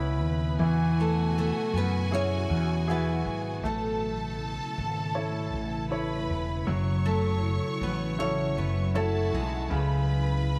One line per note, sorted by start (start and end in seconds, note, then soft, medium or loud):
0.00 0.22 C#2 loud
0.00 10.59 B2 medium
0.00 0.55 C#3 medium
0.00 0.56 C#3 medium
0.00 0.61 B3 medium
0.00 3.60 B3 medium
0.00 0.61 C#4 medium
0.00 0.56 E4 loud
0.00 0.62 E4 medium
0.00 0.56 B4 medium
0.00 0.56 B5 medium
0.22 0.57 D#2 medium
0.59 1.50 E2 loud
0.59 3.59 E3 medium
0.59 3.62 F#3 medium
0.59 3.60 F#4 medium
0.59 3.62 F#4 medium
0.59 3.60 G#5 loud
1.00 1.34 A3 medium
1.00 1.37 A4 medium
1.38 1.72 A3 medium
1.38 1.73 A4 loud
1.73 2.45 F#2 medium
1.73 2.10 B3 medium
1.77 2.11 B4 loud
2.11 2.85 C#4 loud
2.11 2.85 E4 medium
2.11 2.85 F#4 soft
2.11 2.86 G#4 medium
2.11 2.85 C#5 loud
2.50 3.22 E2 loud
2.87 3.61 B3 medium
2.87 3.61 E4 medium
2.87 3.61 F#4 medium
2.87 3.61 G#4 medium
2.87 3.61 B4 loud
3.26 3.61 G#1 medium
3.63 4.54 A1 loud
3.63 9.68 C#3 medium
3.63 6.63 A3 medium
3.63 6.65 A3 medium
3.63 4.36 A3 medium
3.63 6.65 C#4 medium
3.63 10.59 E4 loud
3.63 5.87 A4 medium
3.63 4.37 A4 medium
3.63 5.87 A5 loud
4.78 5.50 G#1 loud
5.15 5.89 E4 soft
5.15 5.89 A4 soft
5.15 5.89 C#5 medium
5.53 6.25 A1 medium
5.91 6.65 E4 medium
5.91 6.65 A4 soft
5.91 6.66 B4 medium
5.91 6.65 C#5 medium
5.91 6.66 B5 loud
6.29 6.65 E1 medium
6.67 7.58 F#1 loud
6.67 9.68 F#3 medium
6.67 9.67 F#3 medium
6.67 9.68 C#4 medium
6.67 8.91 C#5 medium
6.67 8.91 C#6 medium
7.06 7.77 A3 medium
7.06 7.77 A4 medium
7.81 8.53 A1 loud
7.81 8.18 B3 medium
7.81 8.19 B4 medium
8.18 8.55 C#4 medium
8.18 8.93 E4 medium
8.18 8.93 F#4 soft
8.18 8.93 A4 medium
8.18 8.58 C#5 loud
8.57 9.29 F#1 loud
8.57 8.93 B3 medium
8.57 8.93 B4 medium
8.95 9.30 A3 medium
8.95 9.69 E4 medium
8.95 9.69 F#4 medium
8.95 9.70 F#4 medium
8.95 9.31 A4 loud
8.95 9.69 C#5 medium
8.95 9.70 A5 loud
9.33 9.68 B1 medium
9.33 10.44 G#3 medium
9.33 10.44 G#4 medium
9.70 10.59 C#2 loud
9.70 10.59 C#3 medium
9.70 10.59 B3 medium
9.70 10.59 B4 medium
9.70 10.59 B5 loud